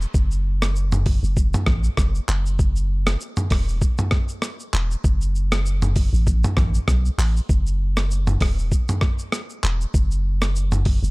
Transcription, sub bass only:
0.14 F#1
1.23 F#1
1.67 A1
1.98 F#1
2.29 F#1
3.51 E1
4.74 E1
5.04 F#1
6.13 A1
6.57 A1
6.88 B1
7.18 A1
7.49 F#1
8.41 E1
9.64 E1
9.94 F#1
11.03 F#1

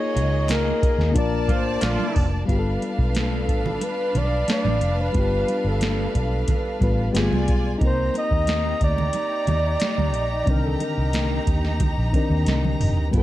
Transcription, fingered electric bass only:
0.16 C#2
0.83 muted fingered electric bass stroke
0.98 D#2
1.16 A#1
1.49 A1
1.82 A#1
2.16 F1
2.49 G1
2.99 B1
3.49 A1
4.15 B1
4.65 A1
4.81 F1
5.15 G1
5.64 G1
6.16 B1
6.81 A1
7.14 G1
7.31 C2
7.49 B1
7.81 C2
8.32 D#2
8.81 D2
9.47 D#2
9.98 D2
10.14 A#1
10.47 C2
10.97 C2
11.47 D#2
11.80 D2
11.98 A#1
12.30 D#2
12.46 C2
12.80 F1
13.14 G1

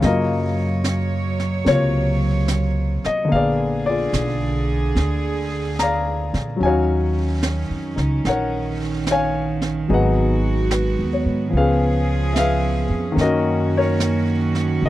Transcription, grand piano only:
0.01 C#3 F#3 A#3
0.05 F4 A#4 D#5
1.65 C3 A#3 A#4 C#5
1.70 F4
3.06 D#5
3.25 D3 A#3
3.32 B3 G#4 D5 F5
3.86 F4 G#4 D5
5.80 D5 F5 A#5
6.56 F#3 C#4
6.63 D#4 F#4 C#5 F5 G#5
7.96 D#4
8.27 A#4 C#5 F#5
9.11 C#5 F5 G#5
9.89 F#3 B3 D#4 G#4
9.93 B4 D#5 F#5
10.72 B4
11.13 C#5
11.50 F3 B3
11.57 C#4 G#4 B4 F5
12.33 E5
12.38 G#4 B4 F5
13.12 D#3 A#3
13.20 C#4 F#4 A#4 D#5
13.77 A#4 C#5
14.86 D#5

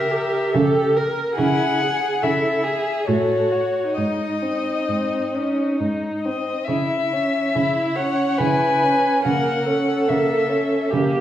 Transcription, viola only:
Already playing: A#4
0.11 G4
0.53 A4
0.97 A#4
1.37 G#4
2.22 A4
2.64 G#4
3.07 F#4
3.96 D#4
7.54 E4
7.96 C#5
8.38 B4
9.23 A#4
9.65 A4
10.91 G4

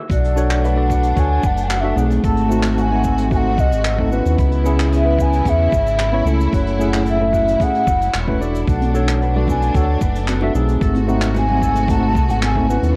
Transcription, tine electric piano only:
0.36 D4 F#4 A4 C#5
0.76 D4 F#4 A4 D5
1.15 D4 F#4 A4 C#5
1.83 D4 F#4 A4 E5
1.96 A3 C4 D#4 G#4
2.49 A3 C4 D#4 F#4
2.90 A3 C4 D#4 G#5
3.30 A3 C4 D#4 F#4
3.98 A3 C4 D#4 A4
4.11 B3 C#4 E4 B4
4.64 B3 C#4 E4 G#4
5.05 B3 C#4 E4 B4
5.45 B3 C#4 E4 G#4
6.12 B3 C#4 E4 C#5
6.26 A3 C#4 E4 A4
6.79 A3 C#4 E4 G#4
7.21 A3 C#4 E4 A4
7.60 A3 C#4 E4 G#4
8.27 A3 C#4 E4 B4
8.40 D4 F#4 A4 D5
8.94 D4 F#4 A4 C#5
9.35 D4 F#4 A4 D5
9.74 D4 F#4 A4 C#5
10.42 D4 F#4 A4 E5
10.55 A3 C4 D#4 G#4
11.07 A3 C4 D#4 F#4
11.49 A3 C4 D#4 G#5
11.88 A3 C4 D#4 F#4
12.55 A3 C4 D#4 A4
12.68 B3 C#4 E4 B4

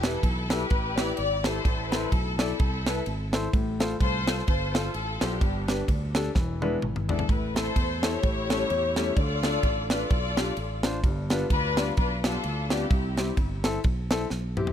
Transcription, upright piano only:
Already playing: E3
0.03 E4 G4 B4
0.50 E4 G4 A4
0.98 E4 G4 B4
1.45 E4 G4 A4
1.65 A2
1.92 E4 A4 C5
2.39 E4 A4 D5
2.86 E4 A4 B4
3.33 E4 A4 C5
3.53 A2
3.80 F4 A4 C5
4.28 F4 A4 C5
4.74 F4 A4 C5
5.21 F4 A4 C5
5.41 G2
5.68 D4 G4 B4
6.15 D4 G4 A4
6.35 E3
6.62 G#3 B3 D4 E4 B4
7.09 G#3 B3 D4 E4 D5
7.29 A2
7.55 C4 E4 A4
8.03 C4 E4 A4
8.22 A2
8.49 G3 A3 C#4 E4 A4
8.96 G3 A3 C#4 E4 G4
9.17 D3
9.43 D4 F4 A4
9.90 D4 F4 B4
10.37 D4 F4 G4
10.84 D4 F4 C5
11.04 G2
11.31 G3 B3 D4 F4 B4
11.77 G3 B3 D4 F4 D5
12.24 G3 B3 D4 F4 G4
12.71 G3 B3 D4 F4 D5
12.91 C3
13.17 C4 E4 G4
13.64 C4 E4 A4
14.11 C4 E4 A4
14.57 C4 E4 G4

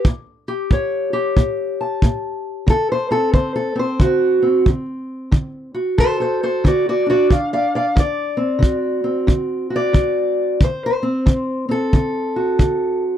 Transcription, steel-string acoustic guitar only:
0.07 A2
0.48 G4
0.71 A2 C#5
1.13 G4
1.37 A2
1.81 A5
2.04 A2
2.66 D3 A4
2.92 C5
3.11 C4 A4
3.34 D3 C5
3.56 A4
3.75 C4 C5
3.99 D3 F#4
4.42 C4
4.68 D3
5.31 D3
5.74 F#4
5.98 D3 A4 C5
6.20 A4 C5
6.43 A4 C5
6.64 D3 F#4 D5
6.89 F#4 D5
7.06 D4 F#4 D5
7.30 D3 D5 F5
7.53 D5 F5
7.75 D5 F5
7.96 D3 D5
8.37 C4
8.59 D3 F#4
9.04 C4
9.27 D3
9.70 F#4
9.76 D5
9.93 D3
10.61 D3 C5
10.86 C5
11.03 C4
11.26 D3
11.69 C4 A4
11.94 D3
12.36 F#4
12.59 D3

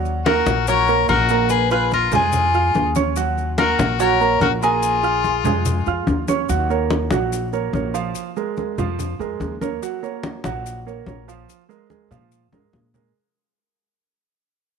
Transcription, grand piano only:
Already playing: F#3 F#4 F#5
0.27 A#3 A#4 A#5
0.69 F#3 F#4 F#5
0.89 A#3 A#4 A#5
1.30 A#3 A#4 A#5
1.71 F4 F5 F6
2.13 G#3 G#4 G#5
2.55 F4 F5 F6
2.96 C#4 C#5 C#6
3.17 F#3 F#4 F#5
3.58 A#3 A#4 A#5
4.00 F#3 F#4 F#5
4.21 A#3 A#4 A#5
4.63 A#3 A#4 A#5
5.03 F4 F5 F6
5.45 G#3 G#4 G#5
5.87 F4 F5 F6
6.28 C#4 C#5 C#6
6.49 F#3 F#4 F#5
6.70 A#3 A#4 C#5
7.12 F#3 F#4 F#5
7.53 A#3 A#4 C#5
7.74 A#3 A#4 C#5
7.94 F3 F4 F5
8.37 G#3 G#4 A#4
8.57 G#3 G#4 A#4
8.78 F3 F4 F5
9.20 G#3 G#4 A#4
9.62 A#3 A#4 C#5
9.82 F#3 F#4 F#5
10.03 A#3 A#4 C#5
10.45 F#3 F#4 F#5
10.87 A#3 A#4 C#5
11.07 A#3 A#4 C#5
11.28 F3 F4 F5
11.69 G#3 G#4 A#4
11.90 G#3 G#4 A#4
12.11 F3 F4 F5
12.52 G#3 G#4 A#4
12.94 G#3 G#4 A#4

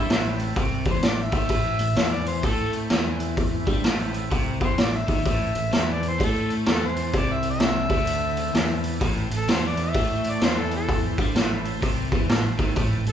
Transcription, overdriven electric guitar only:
0.10 A2
0.56 C3
0.87 E3
1.04 A2
1.33 D#3
1.50 A2
1.80 A2
1.96 E3
2.44 A3
2.91 E3
3.67 G3
3.85 A2
4.31 C3
4.61 E3
4.79 A2
5.08 D#3
5.26 A2
5.55 A2
5.72 E3
6.20 A3
6.67 E3
7.14 C3
7.90 D3
8.54 E3
9.01 A2
9.31 A2
9.48 E3
9.94 A3
10.42 E3
11.19 G3
11.35 A2
11.82 C3
12.13 E3
12.29 A2
12.59 D#3
12.76 A2
13.06 A2

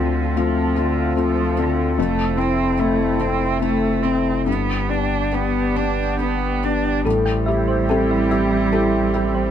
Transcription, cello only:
Already playing: D3
0.37 F3
0.78 D3
1.18 F3
1.59 D3
1.98 A3
2.38 C4
2.79 A3
3.21 C4
3.63 A3
4.03 C4
4.47 B3
4.90 D4
5.34 B3
5.76 D4
6.20 B3
6.64 D4
7.06 G3

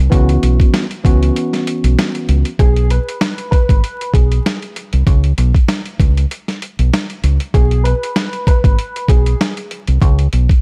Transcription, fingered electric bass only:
0.12 C#2
0.43 B1
1.05 C#2
1.84 B1
2.29 C#2
2.59 B1
3.69 G#1
4.14 B1
4.93 C2
5.07 C#2
5.38 B1
6.00 C#2
6.79 B1
7.24 C#2
7.54 B1
8.64 G#1
9.09 B1
9.88 C2
10.02 C#2
10.33 B1

